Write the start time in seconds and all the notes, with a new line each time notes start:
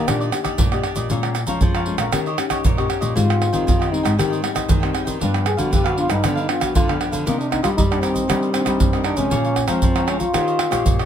0.07 A#2 D#3 A#3 D4 G4 D5 D#5, pandeiro, tamborim, shaker, surdo
0.20 G4 D5 D#5, pandeiro, shaker
0.32 A#3 D4 G4, muted cavaquinho stroke, pandeiro, tamborim, shaker
0.44 G4 D5 D#5, pandeiro, tamborim, shaker, surdo
0.58 A#2 D4 G4 D5 D#5, pandeiro, shaker, surdo
0.71 A#3 D4 G4 D5 D#5, pandeiro, tamborim, shaker, surdo
0.83 D4 G4 D5 D#5, pandeiro, tamborim
0.96 A#2 G4 D5 D#5, pandeiro, shaker, surdo
1.10 A#2 G#3 C#4 F4 G#4 C#5 F5 A#5, pandeiro, shaker, surdo
1.23 pandeiro, tamborim, shaker
1.35 muted cavaquinho stroke, pandeiro, tamborim, shaker
1.47 F3 G#3 C#4 F4 C#5 F5 A#5, pandeiro, shaker, surdo
1.61 F2 F3 G#4 C#5 F5 A#5, pandeiro, shaker, surdo
1.74 C#5 F5 A#5, pandeiro, tamborim, shaker
1.86 G#3 C#4 F4, pandeiro
1.98 A#2 C#5 F5 A#5, pandeiro, tamborim, shaker
2.12 D#3 A#3 C#4 D#4 G4 C#5 D#5, pandeiro, tamborim, shaker, surdo
2.26 G4 C#5 D#5, pandeiro, shaker
2.38 A#3 C#4 G4, muted cavaquinho stroke, pandeiro, tamborim, shaker
2.50 G4 C#5 D#5, pandeiro, tamborim, shaker, surdo
2.64 A#2 D#4 G4 C#5 D#5, pandeiro, shaker, surdo
2.77 A#3 C#4 G4 C#5 D#5, pandeiro, tamborim, shaker, surdo
2.88 D#4 G4 C#5 D#5, pandeiro, tamborim
3.01 A#2 G4 C#5 D#5, pandeiro, shaker, surdo
3.15 G#2 G3 C4 D#4 F4 G#4 C5 D#5 G5, pandeiro, shaker, surdo
3.30 pandeiro, tamborim, shaker
3.40 muted cavaquinho stroke, pandeiro, tamborim
3.52 D#3 G3 C4 D#4 C5 D#5 G5, pandeiro, shaker, surdo
3.66 D#3 G#4 C5 D#5 G5, pandeiro, shaker, surdo
3.79 C5 D#5 G5, pandeiro, tamborim, shaker
3.91 G3 C4 D#4, pandeiro
4.03 G#2 C5 D#5 G5, pandeiro, tamborim, shaker
4.17 G#2 D#3 G3 C4 D#4 G4 G#4 C5 D#5 G5, pandeiro, tamborim, shaker, surdo
4.30 C5 D#5 G5, pandeiro, shaker
4.42 G3 C4 D#4, muted cavaquinho stroke, pandeiro, tamborim
4.54 C5 D#5 G5, pandeiro, tamborim, shaker, surdo
4.68 D#3 G#4 C5 D#5 G5, pandeiro, shaker, surdo
4.81 G3 C4 D#4 C5 D#5 G5, pandeiro, tamborim, shaker, surdo
4.93 G#4 C5 D#5 G5, pandeiro, tamborim
5.05 D#3 C5 D#5 G5, pandeiro, shaker, surdo
5.19 G2 F3 B3 D4 G4 B4 F5, pandeiro, shaker, surdo
5.34 pandeiro, tamborim, shaker
5.45 G#4, muted cavaquinho stroke, pandeiro, tamborim
5.57 D3 F3 B3 D4 F#4 G4 B4 F5, pandeiro, shaker, surdo
5.71 D3 D4 G4 B4 F5, pandeiro, shaker, surdo
5.84 F#4 G4 B4 F5, pandeiro, tamborim, shaker
5.97 F3 B3 D4 F4, pandeiro
6.08 G2 D#4 G4 B4 F5, pandeiro, tamborim, shaker
6.22 G2 D3 F3 B3 D4 G4 B4 F5, pandeiro, tamborim, shaker, surdo
6.35 G4 B4 F5, pandeiro, shaker
6.40 D#4
6.48 F3 B3 D4 F4, muted cavaquinho stroke, pandeiro, tamborim
6.60 F#4 G4 B4 F5, pandeiro, tamborim, shaker, surdo
6.75 D3 D4 F4 G4 B4 F5, pandeiro, shaker, surdo
6.88 F3 B3 D4 G4 B4 F5, pandeiro, tamborim, shaker, surdo
6.99 D4 G4 B4 F5, pandeiro, tamborim
7.11 D3 G4 B4 F5, pandeiro, shaker, surdo
7.25 C3 D#3 A#3 D4 D#4 A#4 C5 D#5, pandeiro, shaker, surdo
7.38 D4 A#4 C5 D#5, pandeiro, shaker
7.50 D#3 A#3 D4 D#4, muted cavaquinho stroke, pandeiro, tamborim, surdo
7.63 G3 F4 A#4 C5 D#5, pandeiro, tamborim, shaker, surdo
7.77 G2 G3 D#4, pandeiro, shaker, surdo
7.90 D#3 A#3 D4 A#4 C5 D#5, pandeiro, tamborim, shaker
8.01 C4 D#4 A#4 C5 D#5, pandeiro, tamborim, shaker
8.14 A#4 C5 D#5, pandeiro, shaker, surdo
8.28 C3 D#3 G3 A#3 D4 D#4 A#4 C5 D#5, pandeiro, tamborim, shaker, surdo
8.42 A#4 C5 D#5, pandeiro, shaker
8.53 D#3 A#3 C4 D4, muted cavaquinho stroke, pandeiro, tamborim, shaker
8.65 G3 A#4 C5 D#5, pandeiro, tamborim, shaker, surdo
8.80 G2 G3, pandeiro, shaker, surdo
8.93 D#3 A#3 D4 A#4 C5 D#5, pandeiro, tamborim, shaker
9.04 D4 D#4 A#4 C5 D#5, pandeiro, tamborim
9.16 C3 F3 G#3 C#4 A#4 C5 D#5, pandeiro, shaker, surdo
9.30 A#2 G#4 C#5 F5 A#5, pandeiro, shaker, surdo
9.43 C#5 F5 A#5, pandeiro, shaker
9.55 muted cavaquinho stroke, pandeiro, tamborim, surdo
9.67 F3 G#3 C4 C#5 F5 A#5, pandeiro, tamborim, shaker, surdo
9.82 F2 F3, pandeiro, shaker, surdo
9.95 C#5 F5 A#5, pandeiro, tamborim, shaker
10.07 F3 G#3 C#4 G#4 C#5 F5 A#5, pandeiro, tamborim
10.19 F4 C#5 F5 A#5, pandeiro, shaker, surdo
10.33 D#3 C#4 D#4 G4 C5 C#5 D#5, pandeiro, tamborim, shaker, surdo
10.47 G4 C#5 D#5, pandeiro, shaker
10.59 muted cavaquinho stroke, pandeiro, tamborim
10.70 A#2 C#4 G4 C5 C#5 D#5, pandeiro, tamborim, shaker, surdo
10.84 A#2, pandeiro, shaker, surdo
10.99 G4 C#5 D#5, pandeiro, tamborim, shaker